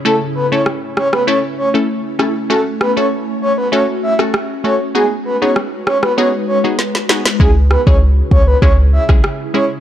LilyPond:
<<
  \new Staff \with { instrumentName = "Soft synth lead" } { \time 4/4 \key cis \minor \tempo 4 = 98 a'16 r16 b'16 cis''16 r8 cis''16 b'16 cis''16 r16 cis''16 r4 r16 | a'16 r16 b'16 cis''16 r8 cis''16 b'16 cis''16 r16 e''16 r8. cis''16 r16 | gis'16 r16 b'16 cis''16 r8 cis''16 b'16 cis''16 r16 cis''16 r4 r16 | gis'16 r16 b'16 cis''16 r8 cis''16 b'16 cis''16 r16 e''16 r8. cis''16 r16 | }
  \new Staff \with { instrumentName = "Ambient pad" } { \time 4/4 \key cis \minor << { r1 | fis'1 | <gis b'>1 | <cis gis'>1 | } \\ { <a cis' e'>1~ | <a cis' e'>1 | <dis' fis'>1 | <cis' e'>1 | } >> }
  \new Staff \with { instrumentName = "Synth stab" } { \time 4/4 \key cis \minor <a cis' e' a'>16 r8 <a cis' e' a'>16 r4 <a cis' e' a'>16 r8 <a cis' e' a'>16 r8 <a cis' e' a'>16 r16 | <a cis' fis' a'>16 r8 <a cis' fis' a'>16 r4 <a cis' fis' a'>16 r8 <a cis' fis' a'>16 r8 <a cis' fis' a'>16 r16 | <b dis' fis' gis'>16 r8 <b dis' fis' gis'>16 r4 <b dis' fis' gis'>16 r8 <b dis' fis' gis'>16 r8 <b dis' fis' gis'>16 r16 | <gis cis' e' gis'>16 r8 <gis cis' e' gis'>16 r4 <gis cis' e' gis'>16 r8 <gis cis' e' gis'>16 r8 <gis cis' e' gis'>16 r16 | }
  \new Staff \with { instrumentName = "808-style bass" } { \clef bass \time 4/4 \key cis \minor r1 | r1 | r1 | cis,8. cis,8. cis,8 cis,8. b,,16 r4 | }
  \new DrumStaff \with { instrumentName = "Drums" } \drummode { \time 4/4 r4 ss8 ss16 ss16 r4 r8 ss8 | r8 ss8 r4 r8. ss16 ss4 | r4 ss8 ss16 ss16 r4 sn16 sn16 sn16 sn16 | bd8 ss16 bd16 r8 bd8 bd8. <bd ss>16 ss4 | }
>>